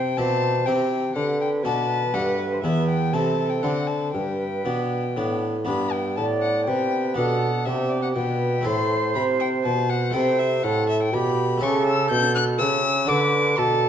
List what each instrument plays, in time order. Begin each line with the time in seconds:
Already playing: harpsichord C3, bassoon C3, flute C5, violin G5
0.17 bassoon B2, harpsichord B2 C4 E4 G4, flute C5, violin A5
0.66 bassoon C3, harpsichord C3 C4 E4 G4, violin G5
1.15 bassoon D3, harpsichord D3, flute B4, violin F#5
1.41 violin G5
1.64 bassoon B2, harpsichord B2 A3 D4 F#4, violin A5
2.13 bassoon G2, harpsichord G2 A3 D4 F#4, violin F#5
2.38 violin B4
2.53 violin C5
2.63 bassoon E2, harpsichord E2 B3 E4, violin E5
2.89 violin G5
3.12 bassoon C3, harpsichord C3 A3 C4 E4, flute A4, violin A5
3.50 violin G5
3.62 bassoon D3, harpsichord D3 A3 C4 D4, violin F#5
3.87 violin A5
4.14 bassoon G2, harpsichord G2, flute B4, violin G5
4.65 harpsichord B2 B3 D4, bassoon B2
5.17 harpsichord A2 B3 D4, bassoon A2
5.65 harpsichord G2 B3 D4, bassoon G2, violin B5
5.92 violin G5
6.17 harpsichord A2, bassoon A2, flute D5, violin A5
6.41 violin F#5
6.65 harpsichord C3, bassoon C3, flute B4, violin G5
7.14 harpsichord B2 B3 D4, bassoon B2, violin F#5
7.19 flute A4
7.66 bassoon C3, harpsichord C3, flute G4, violin E5
7.89 violin D5
8.02 violin F#5
8.15 bassoon B2, harpsichord B2, flute B4, violin G5
8.61 harpsichord A3 E4 A4, violin C6
8.66 bassoon A2, harpsichord A2, flute C5
9.15 harpsichord C3, bassoon C3, violin B5
9.40 violin G5
9.64 bassoon B2, harpsichord B2, violin A5
9.90 violin F#5
10.11 bassoon C3, harpsichord A3 E4 A4, violin G5
10.15 harpsichord C3, flute C5
10.39 violin E5
10.63 bassoon A2, harpsichord A2, flute A4, violin F#5
10.89 violin E5
11.03 violin G5
11.12 bassoon B2, harpsichord B2, flute G4, violin B5
11.58 bassoon C#3, harpsichord A3 G4 A4
11.62 harpsichord C#3, flute A4, violin C#6
11.87 violin E6
12.10 bassoon B2, harpsichord B2, violin G6
12.35 violin F#6
12.58 bassoon C#3, harpsichord C#3, violin E6
13.05 bassoon D3, harpsichord D4 F#4 A4, violin D6
13.10 harpsichord D3, flute B4
13.58 bassoon B2, harpsichord B2, flute A4, violin A5